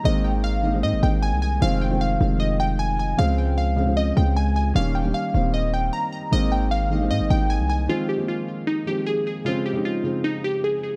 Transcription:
<<
  \new Staff \with { instrumentName = "Synth keys" } { \time 4/4 \key f \minor \tempo 4 = 153 ees''8 g''8 f''4 ees''8 g''8 aes''8 aes''8 | f''8 g''8 f''4 ees''8 g''8 aes''8 aes''8 | f''8 g''8 f''4 ees''8 g''8 aes''8 aes''8 | f''8 g''8 f''4 ees''8 g''8 bes''8 bes''8 |
ees''8 g''8 f''4 ees''8 g''8 aes''8 aes''8 | f'8 g'8 f'4 ees'8 g'8 aes'8 aes'8 | f'8 g'8 f'4 ees'8 g'8 aes'8 aes'8 | }
  \new Staff \with { instrumentName = "Felt piano" } { \clef bass \time 4/4 \key f \minor <ees aes bes c'>4~ <ees aes bes c'>16 r16 <ees aes bes ees'>16 <ees aes bes c'>8. <ees aes bes ees'>4~ <ees aes bes ees'>16 r16 | <ees f aes c'>8. <ees f aes c'>8. <ees f aes c'>4.~ <ees f aes c'>16 r8. | <des f aes c'>4~ <des f aes c'>16 r16 <des f aes c'>16 <des f aes c'>8. <des f aes c'>4~ <des f aes c'>16 r16 | <ees g bes des'>8. <ees g bes des'>8. <ees g bes c'>4.~ <ees g bes c'>16 r8. |
<ees aes bes c'>4~ <ees aes bes c'>16 r16 <ees aes bes ees'>16 <ees aes bes c'>8. <ees aes bes ees'>4~ <ees aes bes ees'>16 r16 | <ees f aes c'>8. <ees f aes bes>4. r16 <ees f aes c'>4~ <ees f aes c'>16 r16 | <des f aes c'>8. <des f aes ees'>8. <des f aes c'>4.~ <des f aes c'>16 r8. | }
  \new Staff \with { instrumentName = "808-style bass" } { \clef bass \time 4/4 \key f \minor aes,,2 aes,16 aes,,16 aes,,8. c,8. | f,,4. f,,2~ f,,8 | des,2~ des,8 des,4. | ees,,4 r8 ees,,4. r4 |
aes,,2 aes,16 aes,,16 aes,,8. c,8. | r1 | r1 | }
>>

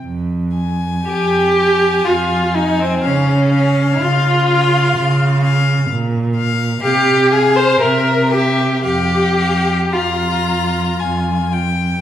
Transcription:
<<
  \new Staff \with { instrumentName = "Violin" } { \time 3/4 \key f \minor \tempo 4 = 60 r8 aes''4 aes''4 aes''8 | f''8 f''4 f''4 f''8 | r8 f''8 f''8 f''8 e''8 e''8 | f''8 f''8 bes''4 aes''8 g''8 | }
  \new Staff \with { instrumentName = "Viola" } { \time 3/4 \key f \minor r4 g'4 f'8 ees'16 c'16 | des'4 f'4. r8 | r4 g'8 aes'16 c''16 bes'8 g'8 | g'4 f'4. r8 | }
  \new Staff \with { instrumentName = "Violin" } { \time 3/4 \key f \minor r4 g'4 f'8 ees'16 c'16 | des'4 f'4. r8 | r4 g'8 aes'16 c''16 bes'8 g'8 | g'4 f'4. r8 | }
  \new Staff \with { instrumentName = "Cello" } { \clef bass \time 3/4 \key f \minor f,4 f,4 f,4 | des4 des4 des4 | bes,4 c4 c4 | f,4 f,4 f,4 | }
>>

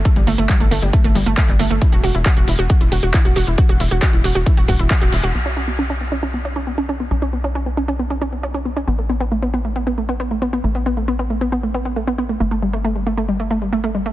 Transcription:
<<
  \new Staff \with { instrumentName = "Synth arpeggio sound" } { \time 4/4 \key g \lydian \tempo 4 = 136 a16 g16 a16 a16 g16 a16 a16 g16 a16 a16 g16 a16 a16 g16 a16 a16 | e'16 fis'16 fis'16 e'16 fis'16 fis'16 e'16 fis'16 fis'16 e'16 fis'16 fis'16 e'16 fis'16 fis'16 e'16 | fis'16 fis'16 e'16 fis'16 fis'16 e'16 fis'16 fis'16 e'16 fis'16 fis'16 e'16 fis'16 fis'16 e'16 fis'16 | b16 cis'16 cis'16 b16 cis'16 cis'16 b16 cis'16 cis'16 b16 cis'16 cis'16 b16 cis'16 cis'16 b16 |
cis'16 cis'16 b16 cis'16 cis'16 b16 cis'16 cis'16 b16 cis'16 cis'16 b16 cis'16 cis'16 b16 cis'16 | b16 a16 b16 b16 a16 b16 b16 a16 b16 b16 a16 b16 b16 a16 b16 b16 | a16 b16 b16 a16 b16 b16 a16 b16 b16 a16 b16 b16 a16 b16 b16 a16 | a16 a16 g16 a16 a16 g16 a16 a16 g16 a16 a16 g16 a16 a16 g16 a16 | }
  \new Staff \with { instrumentName = "Analog synth bass" } { \clef bass \time 4/4 \key g \lydian r16 g,,16 g,,16 g,,16 r16 g,,16 g,,16 g,,16 r16 g,,16 g,,16 g,,16 r16 g,,16 g,,16 g,,16 | r16 e,,16 e,,16 e,,16 r16 e,,16 e,,16 e,,16 r16 e,,16 e,,16 e,,16 r16 e,,16 e,,16 e,,16 | r16 e,,16 e,,16 e,,16 r16 e,,16 e,,16 e,,16 r16 e,,16 e,,16 e,,16 r16 e,,16 e,,16 e,,16 | b,,1 |
b,,1 | a,,1 | a,,1 | g,,1 | }
  \new DrumStaff \with { instrumentName = "Drums" } \drummode { \time 4/4 <hh bd>16 hh16 hho16 hh16 <hc hh bd>16 hh16 hho16 hh16 <hh bd>16 hh16 hho16 hh16 <hc hh bd>16 <hc hh>16 hho16 hh16 | <hh bd>16 hh16 hho16 hh16 <hc hh bd>16 hh16 hho16 hh16 <hh bd>16 hh16 hho16 hh16 <hc hh bd>16 hh16 hho16 hh16 | <hh bd>16 hh16 hho16 hh16 <hc hh bd>16 hh16 hho16 hh16 <hh bd>16 hh16 <hho bd>16 hh16 <hc hh bd>16 <hc hh>16 hho16 hh16 | r4 r4 r4 r4 |
r4 r4 r4 r4 | r4 r4 r4 r4 | r4 r4 r4 r4 | r4 r4 r4 r4 | }
>>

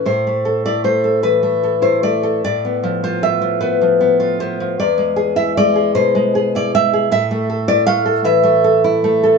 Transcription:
\new Staff \with { instrumentName = "Nylon-string guitar" } { \time 6/8 \key a \minor \tempo 4. = 51 << { c''8. d''16 c''8 b'8. c''16 d''8 | d''8. c''16 e''8 b'4 c''8 | d''8. e''16 d''8 c''8. d''16 e''8 | e''8. d''16 f''8 e''8 r4 | } \\ { a,16 a16 a'16 e'16 a16 a'16 e16 a16 a'16 e'16 a16 a'16 | a,16 b16 f16 f'16 b16 f16 b16 f16 b16 f'16 b16 f16 | e,16 gis16 gis'16 e'16 gis16 gis'16 b,16 gis16 gis'16 e'16 gis16 gis'16 | a,16 a16 a'16 e'16 a16 a'16 e16 a16 a'16 e'16 a16 a'16 | } >> }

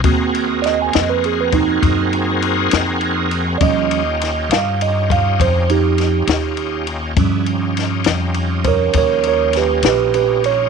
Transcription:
<<
  \new Staff \with { instrumentName = "Tine electric piano" } { \time 12/8 \key ees \dorian \tempo 4. = 67 r4 <d'' ees''>16 aes''16 ees''16 ces''16 aes'16 ces''16 ees'2. r8 | <d'' ees''>4. f''8 ees''8 f''8 c''8 <ees' g'>2 r8 | r2 r8 <bes' c'' des''>8 <bes' des''>8 <bes' des''>8 <g' ces''>8 <g' ces''>8 <g' ces''>8 des''8 | }
  \new Staff \with { instrumentName = "Tine electric piano" } { \time 12/8 \key ees \dorian <bes c' ges'>1. | <f g des'>8 r1 r4. | <f g des'>1. | }
  \new Staff \with { instrumentName = "Tonewheel organ" } { \time 12/8 \key ees \dorian <c' ges' aes' bes'>1. | <des' ees' f' g'>1. | <d' fes' ges' aes'>8 <des' ees' f' g'>1~ <des' ees' f' g'>4. | }
  \new Staff \with { instrumentName = "Upright bass" } { \clef bass \time 12/8 \key ees \dorian ees,4. f,4. ges,4. f,4. | ees,4. g,4. f,4. ees,4. | g,4. f,4. ees,4. bes,,4. | }
  \new DrumStaff \with { instrumentName = "Drums" } \drummode { \time 12/8 <bd cymr>8 cymr8 <cymr sn>8 <cymr sn>8 cymr8 <bd cymr>8 <bd cymr>8 cymr8 cymr8 <cymr sn>8 cymr8 cymr8 | <bd cymr>8 cymr8 <cymr sn>8 <cymr sn>8 cymr8 <bd cymr>8 <bd cymr>8 cymr8 <cymr sn>8 <cymr sn>8 cymr8 cymr8 | <bd cymr>8 cymr8 <cymr sn>8 <cymr sn>8 cymr8 <bd cymr>8 <bd cymr>8 cymr8 <cymr sn>8 <cymr sn>8 cymr8 cymr8 | }
>>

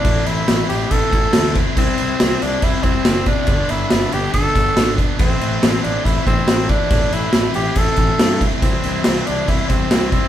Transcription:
<<
  \new Staff \with { instrumentName = "Tenor saxophone" } { \time 4/4 \key a \minor \tempo 4 = 140 d'8 e'4 g'8 a'4. r8 | c'4. d'8 e'8 c'4 d'8~ | d'8 e'4 g'8 a'4. r8 | c'4. d'8 e'8 c'4 d'8~ |
d'8 e'4 g'8 a'4. r8 | c'4. d'8 e'8 c'4 c'8 | }
  \new Staff \with { instrumentName = "Distorted electric guitar" } { \time 4/4 \key a \minor <a, e a c' e'>8 <a c' e'>8 <e a c' e'>4 <a, e a c' e'>8 <a c' e'>8 <e a c' e'>8 <a c' e'>8 | <c g c' e'>8 <g c' e'>8 <c g c' e'>4 <c g c' e'>8 <g c' e'>8 <c g c' e'>8 <g c' e'>8 | <g, d g b d'>8 <g b d'>8 <d g b d'>4 <g, d g b d'>8 <g b d'>8 <d g b d'>8 <g b d'>8 | <a, e a c' e'>8 <a c' e'>8 <e a c' e'>4 <a, e a c' e'>8 <a c' e'>8 <e a c' e'>8 <a c' e'>8 |
<a, e a c' e'>8 <a c' e'>8 <e a c' e'>4 <a, e a c' e'>8 <a c' e'>8 <e a c' e'>8 <a c' e'>8 | <c e g c' e'>8 <g c' e'>8 <e g c' e'>4 <c e g c' e'>8 <g c' e'>8 <e g c' e'>8 <g c' e'>8 | }
  \new Staff \with { instrumentName = "Overdriven electric guitar" } { \time 4/4 \key a \minor <a, e a c' e'>8 <a c' e'>8 <e a c' e'>8 <a, e a c' e'>8 <e a c' e'>8 <a, e a c' e'>8 <e a c' e'>8 <a c' e'>8 | <c g c' e'>8 <g c' e'>8 <c g c' e'>8 <c g c' e'>8 <c g c' e'>8 <c g c' e'>8 <c g c' e'>8 <g c' e'>8 | <g, d g b d'>8 <g b d'>8 <d g b d'>8 <g, d g b d'>8 <d g b d'>8 <g, d g b d'>8 <d g b d'>8 <g b d'>8 | <a, e a c' e'>8 <a c' e'>8 <e a c' e'>8 <a, e a c' e'>8 <e a c' e'>8 <a, e a c' e'>8 <e a c' e'>8 <a c' e'>8 |
<a, e a c' e'>8 <a c' e'>8 <e a c' e'>8 <a, e a c' e'>8 <e a c' e'>8 <a, e a c' e'>8 <e a c' e'>8 <a c' e'>8 | <c e g c' e'>8 <g c' e'>8 <e g c' e'>8 <c e g c' e'>8 <e g c' e'>8 <c e g c' e'>8 <e g c' e'>8 <g c' e'>8 | }
  \new Staff \with { instrumentName = "Fingered electric bass" } { \clef bass \time 4/4 \key a \minor a,,8 a,,8 a,,8 a,,8 a,,8 a,,8 d,4 | c,8 c,8 c,8 c,8 c,8 c,8 fis,,4 | g,,8 g,,8 g,,8 g,,8 g,,8 g,,8 gis,,4 | a,,8 a,,8 a,,8 a,,8 a,,8 a,,8 a,,4 |
a,,8 a,,8 a,,8 a,,8 a,,8 a,,8 g,4 | c,8 c,8 c,8 c,8 c,8 c,8 c,4 | }
  \new DrumStaff \with { instrumentName = "Drums" } \drummode { \time 4/4 <cymc bd>8 cymc8 <cymc sn>8 cymc8 <cymc bd>8 <cymc bd>8 <cymc sn>8 <cymc bd>8 | <cymc bd>8 cymc8 <cymc sn>8 cymc8 <cymc bd>8 <cymc bd>8 <cymc sn>8 <cymc bd>8 | <cymc bd>8 cymc8 <cymc sn>8 cymc8 <cymc bd>8 <cymc bd>8 <cymc sn>8 <cymc bd>8 | <cymc bd>8 cymc8 <cymc sn>8 cymc8 <cymc bd>8 <cymc bd>8 <cymc sn>8 <cymc bd>8 |
<cymc bd>8 cymc8 <cymc sn>8 cymc8 <cymc bd>8 <cymc bd>8 <cymc sn>8 <cymc bd>8 | <cymc bd>8 cymc8 <cymc sn>8 cymc8 <cymc bd>8 <cymc bd>8 <cymc sn>8 <cymc bd>8 | }
>>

